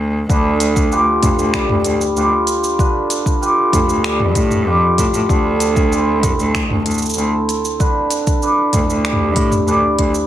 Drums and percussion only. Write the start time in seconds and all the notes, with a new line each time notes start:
0.30 kick, cabasa
0.60 closed hi-hat, cabasa
0.76 kick, cabasa
0.92 cabasa
1.23 kick, closed hi-hat, mid tom, cabasa
1.39 cabasa
1.54 finger snap, kick, cabasa
1.69 mid tom
1.84 closed hi-hat, cabasa
2.01 cabasa
2.17 cabasa
2.47 closed hi-hat, cabasa
2.64 cabasa
2.79 kick, cabasa
3.10 closed hi-hat, cabasa
3.26 kick, cabasa
3.43 cabasa
3.73 kick, closed hi-hat, mid tom, cabasa
3.89 cabasa
4.04 finger snap, cabasa
4.20 mid tom
4.35 kick, closed hi-hat, cabasa
4.51 mid tom, cabasa
4.98 kick, closed hi-hat, cabasa
5.14 cabasa
5.29 kick, cabasa
5.60 closed hi-hat, cabasa
5.76 kick, cabasa
5.92 cabasa
6.23 kick, closed hi-hat, mid tom, cabasa
6.39 cabasa
6.55 finger snap, kick, cabasa
6.70 mid tom
6.86 closed hi-hat, cabasa
6.91 cabasa
6.94 cabasa
6.98 cabasa
7.02 cabasa
7.06 cabasa
7.10 cabasa
7.14 cabasa
7.18 cabasa
7.49 closed hi-hat, cabasa
7.65 cabasa
7.80 kick, cabasa
8.11 closed hi-hat, cabasa
8.27 kick, cabasa
8.42 cabasa
8.73 kick, closed hi-hat, mid tom, cabasa
8.90 cabasa
9.05 finger snap, cabasa
9.12 mid tom
9.36 kick, closed hi-hat, cabasa
9.51 mid tom, cabasa
9.68 cabasa
9.99 kick, closed hi-hat
10.14 cabasa